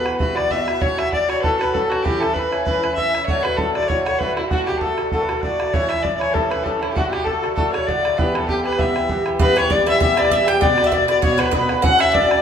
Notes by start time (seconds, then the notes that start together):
Already playing: B4
0.05 E3 B3 F#4, bodhran
0.10 B4
0.19 G2 E3 B3 F#4 B4, bodhran
0.35 E3 B3 F#4 D5, bodhran
0.50 G2 E3 B3 F#4 E5, bodhran
0.67 E3 B3 F#4, bodhran
0.80 A2 F#3 C#4 F#4 C#5, bodhran
0.98 F#3 C#4 F#4 E5, bodhran
1.12 A2 F#3 C#4 F#4 D5, bodhran
1.28 F#3 C#4 F#4 C#5, bodhran
1.40 A2 F#3 A4 B4
1.44 C#4 F#4 A4, bodhran
1.59 F#3 C#4 F#4 B4, bodhran
1.73 A2 F#3 C#4 F#4 A4, bodhran
1.90 F#3 C#4 F#4, bodhran
2.03 A2 E3 C#4 E4 G4, bodhran
2.20 E3 C#4 E4 A4, bodhran
2.34 A2 E3 C#4 B4, bodhran
2.39 E4
2.51 E3 C#4 E4 C#5, bodhran
2.65 A2 E3 C#4 E4 B4, bodhran
2.82 E3 C#4 E4, bodhran
2.95 A2 E3 C#4 E5, bodhran
3.00 E4
3.14 E3 C#4 E4, bodhran
3.26 A2 D3 A3 C#5, bodhran
3.31 F#4
3.43 A3 F#4 B4, bodhran
3.48 D3
3.57 A2 D3 A4, bodhran
3.61 A3 F#4
3.74 A3 F#4 D5, bodhran
3.78 D3
3.83 bodhran
3.88 A2 D3 A3 F#4 C#5, bodhran
4.05 A3 F#4 C#5, bodhran
4.09 D3
4.19 A2 D3 A3 B4, bodhran
4.23 F#4
4.36 D3 A3 E4 F#4, bodhran
4.48 A2 D3 F#4 G4, bodhran
4.52 A3 F#4
4.66 A3 F#4 G4, bodhran
4.71 D3
4.80 A2 D3 A3 A4, bodhran
4.84 F#4
4.98 D3 A3 F#4, bodhran
5.12 A2 D3 A3 F#4 A4, bodhran
5.22 B4
5.29 D3 A3 F#4, bodhran
5.33 A4
5.42 A2 D3 A3 F#4 D5, bodhran
5.59 D3 A3 F#4, bodhran
5.73 A2 E3 C#4 E4 C#5, bodhran
5.89 E3 C#4 E4 E5, bodhran
6.03 A2 E3 C#4 E4 D5, bodhran
6.17 E4 C#5 D5
6.21 E3 C#4, bodhran
6.31 A2 E3 G4 A4
6.35 C#4 E4, bodhran
6.50 E3 C#4 E4 B4, bodhran
6.62 A2 E3 G4 A4
6.66 C#4 E4, bodhran
6.80 C#4 E4, bodhran
6.84 E3
6.91 F#4 G4
6.96 A2 D3 A3 F#4, bodhran
7.11 A3 F#4 G4, bodhran
7.15 D3
7.24 A2 D3 A4, bodhran
7.29 A3 F#4
7.42 D3 A3 F#4, bodhran
7.55 A2 D3 A3 F#4 A4, bodhran
7.72 D3 A3 F#4 C#5, bodhran
7.87 A2 D3 A3 F#4 D5, bodhran
8.03 D3 A3 F#4, bodhran
8.17 G2 E3 B3 G4 B4, bodhran
8.31 B3 G4 A4 B4
8.35 E3, bodhran
8.47 G2 E3 B3 G4, bodhran
8.64 E3 B3 G4 B4, bodhran
8.72 bodhran
8.78 G2 E3 B3 G4 E5, bodhran
8.95 E3 B3 G4, bodhran
9.08 G2 E3 B3 G4, bodhran
9.26 E3 B3 G4, bodhran
9.39 G2 E3 B3 G4 B4, bodhran
9.55 E3 B3 G4 C#5, bodhran
9.69 G2 E3 B3 G4 D5, bodhran
9.79 bodhran
9.86 E3 B3 G4 E5, bodhran
10.00 G2 E3 B3 G4 E5, bodhran
10.16 E3 B3 G4 D5, bodhran
10.25 bodhran
10.30 G2 E3 B3 G4 E5, bodhran
10.46 E3 B3 G4 G5, bodhran
10.61 B2 D3 B3 F#4 D5, bodhran
10.77 D3 B3 F#4, bodhran
10.84 E5
10.90 B2 D3 B3 F#4 D5, bodhran
11.01 bodhran
11.08 D3 B3 F#4 D5, bodhran
11.21 B2 D3 B3 F#4 C#5, bodhran
11.38 B3 F#4 B4, bodhran
11.42 D3, bodhran
11.51 B2 D3 B3 B4, bodhran
11.55 F#4
11.69 D3 B3 F#4, bodhran
11.82 A2 F#3 C#4 F#4 F#5, bodhran
11.98 F#3 C#4 F#4 E5, bodhran
12.12 A2 F#3 C#4 F#4 D5, bodhran
12.23 bodhran
12.28 F#3 C#4 F#4 D5, bodhran